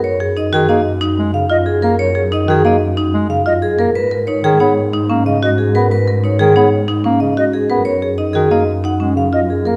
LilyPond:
<<
  \new Staff \with { instrumentName = "Flute" } { \time 6/4 \key fis \major \tempo 4 = 184 r1 r8 dis''8 r4 | r1 r8 dis''8 r4 | r1 r8 dis''8 r4 | r1 r8 dis''8 r4 |
r1 r8 dis''8 r4 | }
  \new Staff \with { instrumentName = "Vibraphone" } { \time 6/4 \key fis \major cis''8 r8 dis''8 gis'8 dis''8 r4. eis''8 r8 gis'8 ais'8 | cis''8 r8 dis''8 gis'8 dis''8 r4. eis''8 r8 gis'8 ais'8 | b'8 r8 cis''8 gis'8 cis''8 r4. dis''8 r8 gis'8 ais'8 | b'8 r8 cis''8 gis'8 cis''8 r4. dis''8 r8 gis'8 ais'8 |
cis''8 r8 dis''8 gis'8 dis''8 r8 fis''8 r8 eis''8 r8 gis'8 ais'8 | }
  \new Staff \with { instrumentName = "Marimba" } { \time 6/4 \key fis \major r8 gis'8 dis'8 fis'8 dis'8 r8 dis'8 r4 eis'8 r8 ais'8 | r8 gis'8 dis'8 fis'8 dis'8 r8 dis'8 r4 eis'8 r8 ais'8 | r8 ais'8 dis'8 gis'8 dis'8 r8 dis'8 cis'8 r8 fis'8 r8 b'8 | r8 ais'8 dis'8 gis'8 dis'8 r8 dis'8 cis'8 r8 fis'8 r8 b'8 |
r8 gis'8 dis'8 fis'8 dis'8 r8 dis'8 cis'8 r8 eis'8 r8 ais'8 | }
  \new Staff \with { instrumentName = "Bass clarinet" } { \clef bass \time 6/4 \key fis \major r4. dis8 ais8 r4 gis8 cis8 r4 ais8 | r4. dis8 ais8 r4 gis8 cis8 r4 ais8 | r4. dis8 b8 r4 ais8 cis8 r4 b8 | r4. dis8 b8 r4 ais8 cis8 r4 b8 |
r4. dis8 ais8 r4 gis8 cis8 r4 ais8 | }
  \new Staff \with { instrumentName = "Double bass section" } { \clef bass \time 6/4 \key fis \major fis,1.~ | fis,1. | gis,1.~ | gis,1. |
fis,1. | }
>>